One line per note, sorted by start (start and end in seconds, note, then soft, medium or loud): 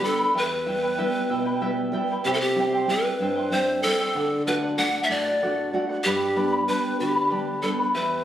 0.01 0.27 G3 soft
0.01 0.28 B3 soft
0.01 0.28 D4 medium
0.01 0.35 A4 medium
0.01 0.18 B4 medium
0.01 0.18 D5 medium
0.01 0.18 G5 soft
0.01 0.18 B5 medium
0.19 0.34 B4 soft
0.19 0.34 D5 medium
0.19 0.35 B5 soft
0.34 0.96 E2 medium
0.34 0.66 E4 medium
0.34 0.66 G4 medium
0.34 0.66 B4 medium
0.34 1.90 B4 medium
0.34 0.65 E5 medium
0.34 0.66 G5 medium
0.66 0.97 G3 soft
0.66 0.97 B3 soft
0.66 0.97 E4 soft
0.66 0.83 E4 medium
0.66 0.82 B4 medium
0.66 0.82 E5 medium
0.66 0.81 G5 medium
0.82 0.97 E4 soft
0.82 0.98 B4 soft
0.82 0.98 G5 soft
0.98 1.49 G3 soft
0.98 1.49 B3 soft
0.98 1.29 E4 medium
0.98 1.49 E4 medium
0.98 1.30 G4 medium
0.98 1.29 B4 medium
0.98 1.29 E5 medium
0.98 1.29 G5 medium
1.29 1.91 B2 medium
1.29 1.46 E4 medium
1.29 1.45 B4 medium
1.29 1.46 E5 medium
1.29 1.44 G5 medium
1.45 1.61 E4 soft
1.45 1.61 B4 soft
1.45 1.61 G5 medium
1.61 1.91 G3 soft
1.61 1.92 B3 soft
1.61 1.92 E4 soft
1.61 1.93 E4 medium
1.61 1.93 G4 medium
1.61 1.93 B4 medium
1.61 1.92 E5 medium
1.61 1.93 G5 medium
1.92 2.18 G3 soft
1.92 2.18 B3 soft
1.92 2.19 E4 soft
1.92 2.09 E4 medium
1.92 2.09 B4 medium
1.92 2.09 E5 medium
1.92 2.09 G5 medium
2.11 2.25 E4 soft
2.11 2.26 B4 soft
2.11 2.26 G5 soft
2.25 2.86 C3 medium
2.25 2.57 E4 medium
2.25 2.35 G4 medium
2.25 2.57 G4 medium
2.25 2.58 C5 medium
2.25 2.57 E5 medium
2.25 2.58 G5 medium
2.33 2.42 A4 medium
2.41 2.89 G4 medium
2.55 2.86 G3 soft
2.55 2.86 C4 soft
2.55 2.87 E4 soft
2.55 2.73 E4 medium
2.55 2.74 E5 medium
2.60 2.74 C5 medium
2.60 2.72 G5 medium
2.74 2.89 E4 soft
2.74 2.89 C5 soft
2.74 2.89 G5 soft
2.87 3.38 G3 soft
2.87 3.38 C4 soft
2.87 3.39 E4 medium
2.87 3.21 G4 medium
2.87 3.53 B4 medium
2.91 3.20 E4 medium
2.91 3.20 E5 medium
2.91 3.21 G5 medium
3.19 3.81 G2 medium
3.19 3.36 E4 medium
3.19 3.36 C5 soft
3.19 3.36 E5 medium
3.19 3.35 G5 medium
3.36 3.51 E4 soft
3.36 3.52 C5 soft
3.36 3.51 G5 soft
3.50 3.82 G3 soft
3.50 3.83 C4 soft
3.50 3.83 E4 medium
3.50 3.83 G4 medium
3.50 3.82 C5 medium
3.50 3.84 C5 medium
3.50 3.83 E5 medium
3.50 3.84 G5 medium
3.83 4.09 G3 soft
3.83 4.09 C4 soft
3.83 4.09 E4 medium
3.83 4.00 E4 medium
3.83 4.42 A4 loud
3.83 4.00 C5 medium
3.83 3.99 E5 medium
3.83 3.99 G5 medium
4.00 4.16 E4 soft
4.00 4.15 C5 soft
4.00 4.15 G5 medium
4.15 4.76 D3 medium
4.15 4.45 A4 medium
4.15 4.46 D5 medium
4.15 4.47 F#5 medium
4.47 4.77 A3 soft
4.47 4.77 D4 soft
4.47 4.77 F#4 medium
4.47 4.62 A4 medium
4.47 4.54 B4 medium
4.47 4.62 D5 medium
4.47 4.61 F#5 medium
4.62 4.77 D5 soft
4.62 4.78 F#5 medium
4.78 5.29 A3 soft
4.78 5.29 D4 soft
4.78 5.29 F#4 soft
4.78 5.09 A4 medium
4.78 5.09 D5 medium
4.78 5.01 F#5 medium
4.78 5.10 F#5 medium
5.03 5.12 E5 medium
5.09 5.71 A2 medium
5.09 5.26 A4 medium
5.09 5.26 D5 medium
5.09 5.81 D5 medium
5.09 5.25 F#5 medium
5.26 5.42 D5 soft
5.26 5.42 F#5 soft
5.42 5.72 A3 medium
5.42 5.72 D4 soft
5.42 5.73 F#4 soft
5.42 5.73 A4 medium
5.42 5.73 D5 medium
5.42 5.73 F#5 medium
5.73 5.99 A3 soft
5.73 5.99 D4 soft
5.73 5.99 F#4 soft
5.73 5.89 A4 medium
5.73 5.89 D5 medium
5.73 5.88 F#5 medium
5.89 6.05 D5 soft
5.89 6.05 F#5 medium
6.04 6.66 G2 medium
6.04 6.63 G4 medium
6.04 6.37 G4 medium
6.04 6.35 B4 medium
6.04 6.36 D5 medium
6.04 6.35 G5 medium
6.04 6.36 B5 medium
6.36 6.67 G3 soft
6.36 6.68 B3 soft
6.36 6.67 D4 soft
6.36 6.52 B4 medium
6.36 6.51 D5 medium
6.36 6.52 G5 medium
6.36 6.51 B5 medium
6.52 6.67 B4 soft
6.52 6.67 D5 soft
6.52 6.68 B5 soft
6.68 7.19 G3 soft
6.68 7.19 B3 soft
6.68 7.19 D4 medium
6.68 7.00 G4 medium
6.68 6.97 B4 medium
6.68 6.98 B4 medium
6.68 6.99 D5 medium
6.68 6.98 G5 medium
6.68 7.00 B5 medium
6.99 7.61 D3 medium
6.99 7.59 G4 medium
6.99 7.15 B4 medium
6.99 7.14 D5 medium
6.99 7.15 G5 soft
6.99 7.14 B5 medium
7.15 7.29 B4 soft
7.15 7.29 D5 soft
7.15 7.29 B5 soft
7.29 7.62 G3 soft
7.29 7.62 B3 soft
7.29 7.63 D4 medium
7.29 7.62 G4 medium
7.29 7.62 B4 medium
7.29 7.62 D5 medium
7.29 7.61 G5 medium
7.29 7.62 B5 medium
7.62 7.88 G3 soft
7.62 7.88 B3 soft
7.62 7.89 D4 medium
7.62 7.69 A4 medium
7.62 7.79 B4 medium
7.62 7.78 D5 medium
7.62 7.78 G5 soft
7.62 7.78 B5 medium
7.79 7.95 B4 soft
7.79 7.94 D5 soft
7.79 7.94 B5 medium
7.94 8.24 E2 medium
7.94 8.24 E4 medium
7.94 8.24 G4 medium
7.94 8.24 B4 medium
7.94 8.24 E5 medium
7.94 8.24 G5 medium
7.94 8.24 B5 medium